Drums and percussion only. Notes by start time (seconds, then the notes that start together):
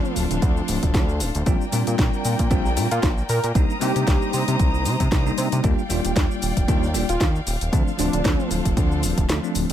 0.05 shaker
0.16 open hi-hat, shaker
0.31 closed hi-hat, shaker
0.42 kick, closed hi-hat, shaker
0.57 shaker
0.68 open hi-hat, shaker
0.83 kick, closed hi-hat, shaker
0.94 kick, snare, closed hi-hat, shaker
1.09 shaker
1.20 open hi-hat, shaker
1.35 closed hi-hat, shaker
1.46 kick, closed hi-hat, shaker
1.61 shaker
1.72 open hi-hat, shaker
1.87 closed hi-hat, shaker
1.99 kick, snare, closed hi-hat, shaker
2.14 shaker
2.25 open hi-hat, shaker
2.39 kick, closed hi-hat, shaker
2.51 kick, closed hi-hat, shaker
2.66 shaker
2.77 open hi-hat, shaker
2.91 closed hi-hat, shaker
3.03 kick, snare, closed hi-hat, shaker
3.18 shaker
3.29 open hi-hat, shaker
3.44 closed hi-hat, shaker
3.55 kick, closed hi-hat, shaker
3.70 shaker
3.81 open hi-hat, shaker
3.96 closed hi-hat, shaker
4.07 kick, snare, closed hi-hat, shaker
4.22 shaker
4.33 open hi-hat, shaker
4.48 closed hi-hat, shaker
4.59 kick, closed hi-hat, shaker
4.74 shaker
4.85 open hi-hat, shaker
5.00 kick, closed hi-hat, shaker
5.12 kick, snare, closed hi-hat, shaker
5.27 shaker
5.38 open hi-hat, shaker
5.52 closed hi-hat, shaker
5.64 kick, closed hi-hat, shaker
5.79 shaker
5.90 open hi-hat, shaker
6.05 closed hi-hat, shaker
6.16 kick, snare, closed hi-hat, shaker
6.31 shaker
6.42 open hi-hat, shaker
6.57 kick, closed hi-hat, shaker
6.68 kick, closed hi-hat, shaker
6.83 shaker
6.94 open hi-hat, shaker
7.09 closed hi-hat, shaker
7.21 kick, snare, closed hi-hat, shaker
7.36 shaker
7.47 open hi-hat, shaker
7.61 closed hi-hat, shaker
7.73 kick, closed hi-hat, shaker
7.88 shaker
7.99 open hi-hat, shaker
8.13 closed hi-hat, shaker
8.25 kick, snare, closed hi-hat, shaker
8.40 shaker
8.51 open hi-hat, shaker
8.65 kick, closed hi-hat, shaker
8.77 kick, closed hi-hat, shaker
8.92 shaker
9.03 open hi-hat, shaker
9.18 kick, closed hi-hat, shaker
9.29 snare, closed hi-hat, shaker
9.44 shaker
9.55 open hi-hat, shaker
9.70 closed hi-hat